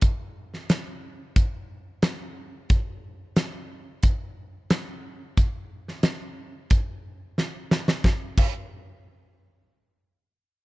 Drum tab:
CC |----------------|----------------|----------------|--x-------------|
HH |x---x---x---x---|x---x---x---x---|x---x---x-------|----------------|
SD |---oo-------o---|----o-------o---|---oo-------o-oo|o---------------|
BD |o-------o-------|o-------o-------|o-------o-------|o-o-------------|